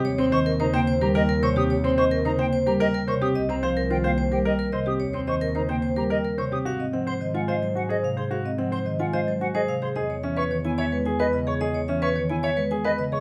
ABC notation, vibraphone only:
X:1
M:3/4
L:1/16
Q:1/4=109
K:Ebmix
V:1 name="Vibraphone"
d c e B c g c B g B d G | d c e B c g c B g B d G | e c f B c g c B g B e G | d c e B c g c B g B d G |
[K:Abmix] f e g c e a e c a c f A | f e g c e a e c a c f A | e ^c =e =B c ^g c B g B _e ^G | e ^c =e =B c ^g c B g B _e ^G |]